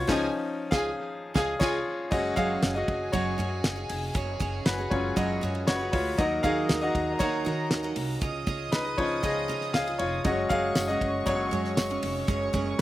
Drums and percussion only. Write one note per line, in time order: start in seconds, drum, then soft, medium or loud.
0.09 kick loud
0.09 snare loud
0.09 crash medium
0.72 kick loud
0.72 snare loud
1.35 kick loud
1.35 snare loud
1.61 kick loud
1.61 snare loud
1.61 crash medium
2.12 kick loud
2.12 crash medium
2.37 kick medium
2.37 ride medium
2.62 snare loud
2.62 ride medium
2.88 kick medium
2.88 ride medium
3.13 kick medium
3.13 ride medium
3.40 ride medium
3.64 snare loud
3.64 ride medium
3.89 open hi-hat medium
3.89 ride medium
4.15 kick loud
4.15 hi-hat pedal medium
4.15 ride medium
4.40 kick medium
4.40 ride medium
4.66 snare loud
4.66 ride medium
4.91 kick medium
4.91 ride medium
5.17 kick medium
5.17 ride medium
5.43 ride medium
5.55 ride soft
5.68 snare loud
5.68 ride medium
5.93 kick loud
5.93 open hi-hat medium
5.93 ride medium
6.18 kick loud
6.18 hi-hat pedal medium
6.18 ride medium
6.44 kick loud
6.44 ride medium
6.69 snare loud
6.69 ride medium
6.95 kick medium
6.95 ride medium
7.20 kick medium
7.20 ride medium
7.46 ride medium
7.71 snare loud
7.71 ride medium
7.84 ride soft
7.96 open hi-hat medium
7.96 ride medium
8.21 kick loud
8.21 hi-hat pedal medium
8.21 ride medium
8.47 kick medium
8.47 ride medium
8.72 snare loud
8.72 ride medium
8.98 kick medium
8.98 ride medium
9.24 kick medium
9.24 ride medium
9.49 ride medium
9.61 snare soft
9.74 snare loud
9.74 ride medium
9.87 ride soft
9.99 ride medium
10.25 kick loud
10.25 ride medium
10.50 kick medium
10.50 ride medium
10.75 snare loud
10.75 ride medium
10.75 tambourine loud
11.01 kick medium
11.01 ride medium
11.27 kick medium
11.27 ride medium
11.53 ride medium
11.65 snare soft
11.77 snare loud
11.77 ride medium
11.77 tambourine medium
11.91 ride soft
12.03 open hi-hat medium
12.03 ride medium
12.28 kick loud
12.28 hi-hat pedal medium
12.28 ride medium
12.54 kick medium
12.54 ride medium